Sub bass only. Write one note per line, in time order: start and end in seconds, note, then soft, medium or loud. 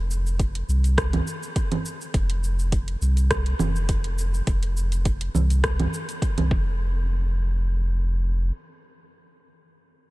0.00 0.63 F1 medium
0.68 1.21 C2 loud
2.14 2.96 F1 loud
3.01 3.54 C2 medium
3.60 4.41 F1 loud
4.47 5.29 F1 loud
5.34 5.87 C2 medium
6.37 6.51 C2 medium
6.51 8.51 F1 loud